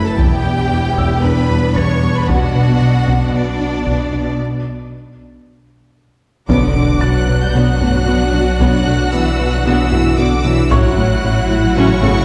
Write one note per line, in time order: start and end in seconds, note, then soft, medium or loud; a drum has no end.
0.00 0.18 F#1 medium
0.00 0.19 F#2 medium
0.00 0.15 A3 medium
0.00 1.20 E4 medium
0.00 0.94 E6 soft
0.00 0.21 F#6 medium
0.05 0.18 A4 medium
0.05 0.19 A5 medium
0.18 2.29 E1 medium
0.18 0.34 E2 medium
0.18 2.29 E2 medium
0.18 0.34 E3 medium
0.18 4.35 B3 medium
0.18 1.21 G4 medium
0.18 1.24 G5 medium
0.18 taiko medium
0.45 0.61 E2 medium
0.45 0.61 D4 medium
0.72 0.87 E2 medium
0.97 1.13 E2 medium
0.97 1.13 E3 medium
0.97 2.52 E6 soft
0.97 taiko medium
1.24 1.40 E2 medium
1.24 4.40 D4 medium
1.24 1.40 D4 medium
1.24 1.76 B4 medium
1.24 1.76 B5 medium
1.50 1.66 E2 soft
1.50 1.66 G3 medium
1.76 1.93 E2 medium
1.76 1.92 E3 medium
1.76 2.16 C#5 medium
1.76 2.16 C#6 medium
1.76 3.30 A6 soft
1.76 taiko medium
2.03 2.19 E2 medium
2.03 2.19 G3 medium
2.16 2.29 B4 medium
2.16 2.29 B5 medium
2.29 4.35 B1 medium
2.29 2.45 B2 medium
2.29 4.36 B2 medium
2.29 2.45 B3 medium
2.29 3.34 F#4 medium
2.29 3.33 F#5 medium
2.29 taiko medium
2.55 2.71 B2 medium
2.55 2.71 B4 medium
2.82 2.98 B2 medium
3.07 3.24 B2 medium
3.07 3.23 B3 medium
3.07 taiko medium
3.34 3.50 B2 medium
3.34 4.39 D4 medium
3.34 3.50 B4 medium
3.34 4.37 D5 medium
3.60 3.76 B2 soft
3.60 3.76 D4 medium
3.86 4.02 B2 medium
3.86 4.02 B3 medium
3.86 taiko medium
4.13 4.29 B2 medium
4.13 4.29 D4 medium
6.49 10.73 B1 medium
6.49 6.57 B1 medium
6.49 6.66 B2 medium
6.49 6.99 D3 medium
6.49 6.69 F#3 medium
6.49 6.74 B3 medium
6.49 6.66 B3 medium
6.49 10.67 D4 medium
6.49 6.69 D4 medium
6.49 10.67 F#4 medium
6.49 10.67 F#5 medium
6.49 6.99 D6 medium
6.49 taiko medium
6.49 impact medium
6.75 6.84 B1 soft
6.75 6.92 B2 medium
6.75 6.83 A3 soft
6.75 6.92 D4 medium
7.01 7.10 B1 soft
7.01 7.19 B2 medium
7.01 7.41 F#3 medium
7.01 7.10 B3 soft
7.01 7.18 B4 medium
7.01 7.42 F#6 medium
7.01 8.56 A6 medium
7.28 7.37 B1 soft
7.28 7.45 B2 medium
7.28 7.36 F#3 medium
7.28 7.45 B4 medium
7.42 7.55 G3 medium
7.42 7.55 G6 medium
7.54 7.63 B1 medium
7.54 7.71 B2 medium
7.54 8.58 F#3 medium
7.54 7.74 F#3 medium
7.54 7.79 B3 medium
7.54 7.71 B3 loud
7.54 7.74 D4 medium
7.54 8.58 F#6 medium
7.81 7.89 B1 soft
7.81 7.89 A3 medium
7.81 7.98 B3 medium
7.81 7.97 F#4 medium
7.81 taiko low-mid soft
8.07 8.16 B1 soft
8.07 8.15 B3 medium
8.07 8.24 B3 medium
8.07 8.23 F#4 medium
8.33 8.42 B1 soft
8.33 8.50 B2 medium
8.33 8.42 F#3 soft
8.33 8.49 D4 medium
8.60 8.68 B1 medium
8.60 8.76 B2 medium
8.60 9.12 F#3 medium
8.60 8.79 F#3 medium
8.60 8.76 B3 medium
8.60 8.85 B3 medium
8.60 8.79 D4 medium
8.60 9.12 F#6 medium
8.60 taiko medium
8.86 8.95 B1 medium
8.86 9.03 B2 medium
8.86 8.95 A3 soft
8.86 9.02 D4 medium
9.13 9.21 B1 medium
9.13 9.29 B2 medium
9.13 9.52 E3 medium
9.13 9.21 B3 soft
9.13 9.29 B4 medium
9.13 9.53 E6 medium
9.39 9.47 B1 soft
9.39 9.56 B2 medium
9.39 9.48 F#3 soft
9.39 9.55 B4 medium
9.52 9.66 F#3 medium
9.52 9.66 F#6 medium
9.65 9.73 B1 medium
9.65 9.82 B2 medium
9.65 10.17 E3 medium
9.65 9.85 F#3 medium
9.65 9.81 B3 medium
9.65 9.91 B3 medium
9.65 9.85 D4 medium
9.65 10.17 E6 medium
9.92 10.00 B1 medium
9.92 10.01 A3 soft
9.92 10.08 B3 medium
9.92 10.08 F#4 medium
9.92 taiko low-mid soft
10.18 10.26 B1 medium
10.18 10.45 D3 medium
10.18 10.34 B3 medium
10.18 10.27 B3 medium
10.18 10.34 F#4 medium
10.18 10.45 D6 medium
10.44 10.53 B1 medium
10.44 10.61 B2 medium
10.44 10.71 E3 medium
10.44 10.52 F#3 medium
10.44 10.61 D4 medium
10.44 10.71 E6 medium
10.71 10.79 A1 medium
10.71 12.25 A1 medium
10.71 10.87 A2 loud
10.71 11.76 F#3 medium
10.71 10.87 F#3 medium
10.71 10.90 F#3 medium
10.71 10.95 C#4 medium
10.71 12.25 E4 medium
10.71 10.90 E4 medium
10.71 12.25 F#4 medium
10.71 12.25 F#5 medium
10.71 12.25 C#6 medium
10.71 11.76 F#6 medium
10.71 taiko medium
10.97 11.06 A1 medium
10.97 11.13 A2 medium
10.97 11.13 A3 medium
10.97 11.06 B3 medium
11.23 11.31 A1 medium
11.23 11.40 A2 medium
11.23 11.32 C#4 medium
11.23 11.40 E4 medium
11.50 11.58 A1 medium
11.50 11.66 A2 medium
11.50 11.58 A3 medium
11.50 11.66 E4 medium
11.76 11.84 A1 medium
11.76 11.93 A2 loud
11.76 12.25 C#3 medium
11.76 11.92 F#3 loud
11.76 11.95 F#3 medium
11.76 12.01 C#4 medium
11.76 11.95 E4 medium
11.76 12.25 C#6 loud
12.02 12.10 A1 medium
12.02 12.19 A3 medium
12.02 12.12 B3 medium
12.02 12.19 C#4 medium
12.02 taiko low-mid medium